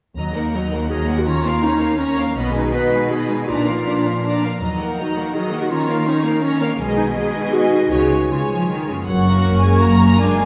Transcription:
0.17 double bass section D#2, cello section D#2, harp D#3, viola section F#3, violin section D#5 A#5
0.35 viola section A#3, clarinet D#4, harp D#4, violin section A#4 F#5
0.55 viola section F#3, harp A#3, violin section D#5 A#5
0.72 viola section A#3, harp F#4, violin section A#4 F#5
0.90 viola section F#3, clarinet G#4, harp A#4, violin section D#5 A#5
1.08 viola section A#3, harp F#4, violin section A#4 F#5
1.19 clarinet F#4
1.27 harp D#3, viola section C#4, clarinet F4, violin section C#5 A#5
1.44 viola section A#3, harp A#3, violin section A#4 F5
1.63 viola section C#4, harp C#4, clarinet D#4, violin section C#5 A#5
1.81 viola section A#3, harp F4, violin section A#4 F5
1.98 viola section C#4, clarinet C#4, harp A#4, violin section C#5 A#5
2.17 viola section A#3, harp F4, violin section A#4 F5
2.36 double bass section B1, harp B2, cello section B2, viola section B3, violin section D#5 B5
2.53 viola section G#3, harp B3, clarinet D#4, violin section B4 G#5
2.73 viola section B3, harp D#4, clarinet B4, violin section D#5 B5
2.91 viola section G#3, harp B3, violin section B4 G#5
3.09 viola section B3, clarinet G#4, harp G#4, violin section D#5 B5
3.29 viola section G#3, harp D#4, violin section B4 G#5
3.48 double bass section A#1, cello section A#2, harp A#2, viola section D4, clarinet F4, violin section D5 A#5
3.68 harp F3, viola section A#3, violin section A#4 F5
3.86 harp D4, viola section D4, violin section D5 A#5
4.04 viola section A#3, harp F4, violin section A#4 F5
4.24 viola section D4, harp A#4, violin section D5 A#5
4.42 viola section A#3, harp F4, violin section A#4 F5
4.60 double bass section D#2, harp D#3, cello section D#3, viola section F#3, violin section D#5 A#5
4.79 viola section A#3, harp A#3, clarinet D#4, violin section A#4 F#5
4.98 viola section F#3, harp D#4, violin section D#5 A#5
5.17 viola section A#3, harp F#4, violin section A#4 F#5
5.34 viola section F#3, clarinet G#4, harp A#4, violin section D#5 A#5
5.52 viola section A#3, harp F#4, violin section A#4 F#5
5.62 clarinet F#4
5.70 harp D#3, viola section C#4, clarinet F4, violin section C#5 A#5
5.88 viola section A#3, harp A#3, violin section A#4 F5
6.06 viola section C#4, harp C#4, clarinet D#4, violin section C#5 A#5
6.24 viola section A#3, harp F4, violin section A#4 F5
6.42 clarinet C#4, viola section C#4, harp A#4, violin section C#5 A#5
6.61 viola section A#3, harp F4, violin section A#4 F5
6.79 double bass section B1, harp B2, cello section B2, viola section G#3, violin section D#5 G#5
6.97 harp B3, clarinet D#4
7.16 viola section G#3, harp G#3, clarinet G#4, violin section D#5 G#5
7.36 harp D#4
7.53 clarinet F#4, harp G#4
7.72 harp D#4
7.91 double bass section C#2, cello section C#3, harp C#3, viola section G#3, clarinet F#4, violin section C#5 G#5
8.12 harp G#3
8.30 cello section C#3, viola section G#3, harp C#4, clarinet F4, violin section C#5 G#5
8.50 cello section F3, harp G#4
8.69 cello section D#3, harp C#4
8.88 harp F#2 G#4, cello section C#3
8.94 harp A#3
8.99 harp C#4
9.03 french horn section F#3, harp F#4, violin section F#5
9.07 double bass section F#1, cello section F#2, clarinet A#4, flute C#6
9.26 viola section A#3 C#4, violin section F#4 A#4
9.45 double bass section F#1, cello section F#2
9.63 french horn section G#3, viola section A#3 C#4, violin section F#4 A#4 G#5
9.82 double bass section F#1, cello section F#2, french horn section A#3, violin section A#5
10.02 harp F#2, viola section A#3 C#4, violin section F#4 A#4
10.07 harp A#3
10.11 harp D4
10.16 harp F4, violin section G#5
10.20 double bass section F#1, cello section F#2, french horn section G#3, viola section A#3 D4, violin section F4 A#4, flute D6
10.40 viola section A#3 D4, violin section F4 A#4

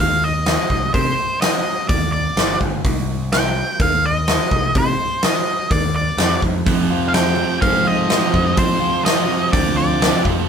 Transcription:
0.00 picked electric bass D#2, lead electric guitar F5
0.24 lead electric guitar D#5
0.46 snare, open hi-hat
0.70 picked electric bass C2, kick
0.94 picked electric bass C3, lead electric guitar C5, kick, open hi-hat
1.41 lead electric guitar D#5, snare, open hi-hat
1.89 picked electric bass D#2, lead electric guitar D5, kick, open hi-hat
2.13 lead electric guitar D5
2.36 picked electric bass G1, snare, open hi-hat
2.61 picked electric bass G1, kick
2.84 picked electric bass C2, kick, open hi-hat
3.32 lead electric guitar G5, snare, open hi-hat
3.79 picked electric bass D#2, lead electric guitar F5, kick, open hi-hat
4.06 lead electric guitar D#5
4.27 snare, open hi-hat
4.51 picked electric bass C2, kick
4.75 picked electric bass C3, lead electric guitar C5, kick, open hi-hat
5.22 lead electric guitar D#5, snare, open hi-hat
5.71 picked electric bass D#2, lead electric guitar D5, kick, open hi-hat
5.96 lead electric guitar D5
6.17 picked electric bass F2, snare, open hi-hat
6.42 picked electric bass F2, kick
6.66 distorted electric guitar F2 C3 F3, picked electric bass F2, clean electric guitar F2, kick, open hi-hat
6.90 distorted electric guitar F2 C3 F3, clean electric guitar F4
7.09 lead electric guitar F5
7.14 distorted electric guitar F2 C3 F3, clean electric guitar C4, lead electric guitar G5, snare, open hi-hat
7.36 distorted electric guitar F2 C3 F3, clean electric guitar F3
7.61 distorted electric guitar F2 C3 F3, picked electric bass G#2, clean electric guitar C4, lead electric guitar F5, kick, open hi-hat
7.84 distorted electric guitar F2 C3 F3, clean electric guitar F4, lead electric guitar D#5
8.08 distorted electric guitar F2 C3 F3, clean electric guitar C4, snare, open hi-hat
8.33 distorted electric guitar F2 C3 F3, picked electric bass F2, clean electric guitar F3, kick
8.56 clean electric guitar F2, distorted electric guitar F2 C3 F3, picked electric bass F3, lead electric guitar C5, kick, open hi-hat
8.80 distorted electric guitar F2 C3 F3, clean electric guitar F4
9.04 distorted electric guitar F2 C3 F3, clean electric guitar C4, lead electric guitar D#5, snare, open hi-hat
9.28 distorted electric guitar F2 C3 F3, clean electric guitar F3
9.51 picked electric bass D2, distorted electric guitar F2 C3 F3, clean electric guitar C4, lead electric guitar D5, kick, open hi-hat
9.76 distorted electric guitar F2 C3 F3, clean electric guitar F4, lead electric guitar D5
10.00 distorted electric guitar F2 C3 F3, clean electric guitar C4, snare, open hi-hat
10.24 distorted electric guitar F2 C3 F3, picked electric bass F2, clean electric guitar F3, kick

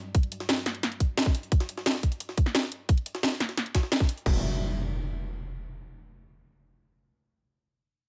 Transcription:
Already playing: analog synth pad G3 F#4 D5
0.15 kick, closed hi-hat
0.23 closed hi-hat
0.32 closed hi-hat
0.40 snare, closed hi-hat
0.49 snare, closed hi-hat
0.57 snare
0.66 snare, closed hi-hat
0.75 closed hi-hat
0.83 snare, closed hi-hat
0.92 closed hi-hat
1.00 kick, closed hi-hat
1.17 snare, closed hi-hat
1.26 kick, snare
1.35 closed hi-hat
1.43 closed hi-hat
1.52 kick, closed hi-hat
1.60 snare, closed hi-hat
1.69 closed hi-hat
1.77 snare
1.86 snare, closed hi-hat
1.95 snare
2.03 kick, closed hi-hat
2.12 closed hi-hat
2.20 closed hi-hat
2.29 snare
2.37 kick, closed hi-hat
2.46 snare
2.55 snare, closed hi-hat
2.63 snare
2.72 closed hi-hat
2.89 kick, closed hi-hat
2.98 closed hi-hat
3.06 closed hi-hat
3.15 snare, closed hi-hat
3.23 snare, closed hi-hat
3.32 snare
3.40 snare, closed hi-hat
3.49 snare, closed hi-hat
3.57 snare, closed hi-hat
3.66 closed hi-hat
3.75 kick, snare, closed hi-hat
3.83 snare
3.92 snare, closed hi-hat
4.00 kick, snare
4.09 closed hi-hat
4.17 closed hi-hat
4.26 detuned saw bass E1, analog synth pad G3 F#4 E5, kick, crash, impact

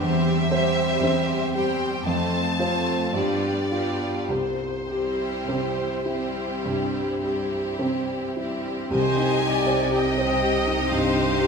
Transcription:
0.00 cello section E2, grand piano E2, viola section G3 C4, violin section G4 C5 E5
0.51 viola section G3 C4, violin section G4 C5, grand piano C5
1.02 cello section E2, grand piano C4
1.54 viola section G3 C4, grand piano G4, violin section G4 C5 G5
2.05 cello section F2, grand piano F2, viola section A3 C4, violin section F4 C5 A5
2.58 viola section A3 C4, violin section F4 C5, grand piano F4 C5
3.13 grand piano G2, cello section G2, viola section G3 B3, violin section F4 G4 D5
3.71 viola section G3 B3, violin section F4 G4, grand piano F4 G4
4.29 grand piano C2, cello section C3, violin section C5
4.89 viola section G3 C4, violin section E4 G4, grand piano G4
5.49 cello section C3, grand piano C4
6.05 viola section G3 C4, grand piano E4, violin section E4 G4
6.65 grand piano G2, cello section C3
7.23 viola section G3 C4, violin section E4 G4, grand piano G4
7.79 cello section C3, grand piano C4
8.36 viola section G3, grand piano E4, violin section E4 G4
8.40 viola section C4
8.90 grand piano C2, violin section G#5
8.95 double bass section C2, cello section C3, timpani C3, violin section G4 D#5, viola section C5
9.18 grand piano D#4
9.41 grand piano G4
9.48 viola section D5
9.67 grand piano C5
9.91 grand piano G4, violin section G5
9.97 violin section G4 D#5, viola section D#5
10.18 grand piano C5
10.41 grand piano G4
10.67 grand piano D#4
10.91 grand piano G2, violin section F5
10.96 viola section C5
11.16 grand piano D#4
11.40 grand piano G4

